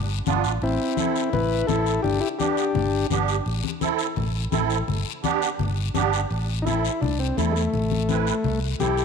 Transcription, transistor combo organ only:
0.63 1.30 C4 medium
0.63 1.33 E4 medium
1.33 1.67 E4 medium
1.33 1.66 B4 loud
1.67 2.02 E4 medium
1.67 2.01 A4 loud
2.02 2.21 D4 medium
2.02 2.19 G4 loud
2.20 2.29 E4 medium
2.20 2.28 G4 medium
2.39 3.07 D4 medium
2.39 3.06 G4 medium
6.62 6.65 D#4 medium
6.66 7.01 E4 loud
7.01 7.19 D4 medium
7.19 7.37 C4 medium
7.37 7.55 A3 medium
7.51 7.54 G#3 medium
7.56 8.59 A3 medium
8.80 9.05 G4 loud

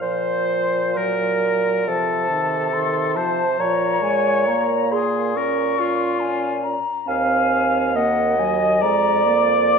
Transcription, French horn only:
0.02 0.97 F3 soft
0.95 1.89 F#3 soft
1.87 2.30 F3 soft
2.31 2.73 D#3 soft
2.73 3.18 D#3 medium
3.16 3.46 F3 soft
3.59 4.01 F3 soft
4.02 4.49 G#3 medium
4.47 5.36 A#3 soft
5.37 6.20 C#4 soft
6.21 6.79 C#4 soft
7.07 7.96 C4 medium
7.95 8.38 A#3 medium
8.38 8.84 F#3 medium
8.83 9.28 G#3 medium
9.26 9.79 A#3 medium

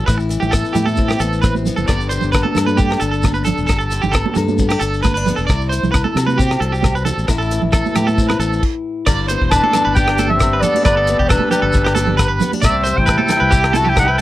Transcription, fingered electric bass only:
0.08 0.37 A1 medium
0.43 0.62 A1 medium
0.75 1.14 A2 medium
1.20 1.69 A1 medium
1.78 1.87 F#1 medium
1.89 2.18 G1 medium
2.23 2.42 G1 medium
2.56 2.95 G2 medium
3.02 3.51 G1 medium
3.59 3.68 E1 medium
3.70 3.99 G1 medium
4.04 4.23 G1 medium
4.36 4.75 G2 medium
4.81 5.30 G1 medium
5.38 5.48 E1 medium
5.49 5.79 C2 medium
5.83 6.03 C2 medium
6.16 6.55 C3 medium
6.61 7.10 C2 medium
7.18 7.27 A1 medium
7.29 7.58 A1 medium
7.63 7.82 A1 medium
7.96 8.34 A2 medium
8.39 8.59 A1 loud
9.07 9.36 G1 medium
9.42 9.61 E1 medium
9.87 10.63 G1 medium
10.86 11.15 G1 medium
11.19 11.38 E1 medium
11.63 12.40 G1 medium
12.64 12.93 C2 loud
12.98 13.17 A1 loud
13.41 14.18 C2 medium

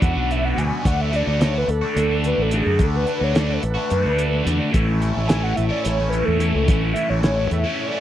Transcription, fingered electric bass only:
0.02 0.14 E2 medium
0.16 0.52 B1 medium
0.57 0.70 D2 medium
0.86 1.22 D2 medium
1.27 1.63 D2 medium
1.68 1.81 D2 medium
1.96 2.32 D2 medium
2.38 2.62 A1 medium
2.66 2.78 F#2 medium
2.80 3.04 D2 medium
3.21 3.57 D2 medium
3.63 3.75 A1 medium
3.91 4.03 F#2 medium
4.05 4.41 D2 medium
4.46 4.59 E2 loud
4.75 5.10 A1 loud
5.17 5.53 A1 medium
5.58 5.70 A1 medium
5.86 6.22 A1 medium
6.28 6.51 E2 medium
6.55 6.67 C#2 medium
6.69 6.93 A1 loud
7.10 7.46 A1 medium
7.51 7.63 E2 medium

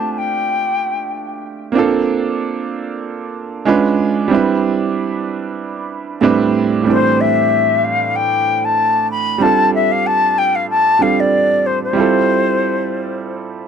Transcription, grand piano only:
0.00 1.69 A3 medium
0.00 1.70 C4 medium
0.00 1.71 D4 medium
0.00 1.72 F4 medium
0.00 1.73 G4 medium
1.72 3.61 A#3 medium
1.72 3.62 C4 medium
1.72 3.63 D4 medium
1.77 3.63 F4 medium
1.77 3.64 A4 medium
3.65 4.30 G#3 medium
3.65 4.30 C#4 medium
3.65 4.30 D4 medium
3.65 4.31 F4 medium
3.65 4.31 B4 medium
4.28 6.17 G3 medium
4.28 6.17 C4 medium
4.28 6.18 D4 medium
4.33 6.19 E4 medium
4.33 6.20 B4 medium
6.21 6.81 A2 medium
6.21 6.83 G3 medium
6.21 6.84 C4 medium
6.21 6.85 D4 medium
6.21 6.86 E4 medium
6.21 6.87 B4 medium
6.83 9.35 A2 medium
6.83 9.36 G3 medium
6.83 9.37 C4 soft
6.87 9.38 E3 medium
6.87 9.37 D4 medium
6.87 6.95 A4 soft
6.96 9.42 C5 medium
9.38 10.96 G3 medium
9.38 10.97 C4 medium
9.38 10.97 D4 medium
9.43 10.98 F4 medium
9.43 10.99 A4 medium
10.99 11.92 G3 soft
10.99 11.93 C4 soft
10.99 11.96 D4 soft
10.99 11.97 F4 soft
10.99 11.97 A4 soft
11.93 13.68 G3 medium
11.93 13.68 C4 medium
11.93 13.68 E4 medium
11.98 13.68 F4 medium
11.98 13.68 A4 medium

